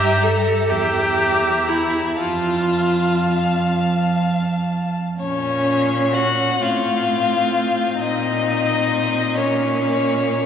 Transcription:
Already playing: G2 G4 E5 A#5
0.23 A4
0.70 E2 G4 E5 A#5
1.68 E4
2.17 F2 F4 F5 A5
5.20 A#2 C#4 C#5
6.14 F#4 F#5
6.61 A2 C4 F4 F5
7.99 A#2 D#4 D#5
9.37 A#3 C#4 C#5

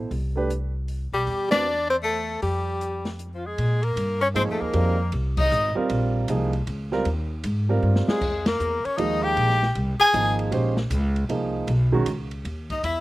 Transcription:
0.11 C2, open hi-hat
0.36 A3 D4 G4 B4
0.50 closed hi-hat
0.88 open hi-hat
1.12 B1 G3 G4
1.27 E2, open hi-hat
1.50 C4 D4 F#4 B4 D5, snare, ride
1.90 C4 C5
2.03 A3 A4, open hi-hat
2.42 F2 G3 G4, open hi-hat
2.81 closed hi-hat
3.05 snare, open hi-hat
3.19 closed hi-hat
3.34 F3 F4
3.46 G#3 G#4
3.58 A#2, ride
3.82 A#3 A#4, ride
3.96 G2, hi-hat pedal, ride
4.21 C#4 C#5, ride
4.34 G#2 F3 A#3 C4 D#4 G#4 C5, ride
4.48 F2 A3 A4
4.61 D#2 A#3 A#4
4.73 F2 G3 C4 F4 A#4, ride
5.12 C2, ride
5.37 D#4 D#5, kick, crash
5.51 G#1, hi-hat pedal
5.75 G3 C4 F4 A#4, muted upright bass stroke
5.90 A#1, ride
6.28 C2 F3 A#3 D#4 G#4, hi-hat pedal, ride
6.53 ride
6.67 C#2, ride
6.92 G3 C4 F4 A#4, snare
7.05 D#2, ride
7.44 G#2, hi-hat pedal, ride
7.69 G3 C4 F4 A#4
7.83 G2
7.96 snare
8.08 G#3 G#4, muted upright bass stroke, snare
8.21 F2, kick, crash
8.46 A#3 A#4, snare, ride
8.60 E2, hi-hat pedal
8.85 C#4 C#5, muted upright bass stroke, ride
8.97 D#2 F3 G#3 A#3 D#4 D#5, ride
9.23 G4 G5
9.37 A#1, ride
9.50 snare
9.63 snare
9.75 C2, ride
10.00 G#4 G#5
10.13 G#1 F3 A#3 D#4 G#4, hi-hat pedal, ride
10.39 ride
10.51 A#1 G#3 C#4 G4 C5, ride
10.77 snare
10.90 C#2, hi-hat pedal, ride
11.16 ride
11.29 C2 F3 A#3 D#4 G#4, ride
11.67 B1, ride
11.92 D#3 G#3 C#4 F#4, kick
12.06 C#2, hi-hat pedal, ride
12.31 ride
12.45 D#2, ride
12.70 D#4 D#5, kick, ride
12.83 E2 E4 E5, ride

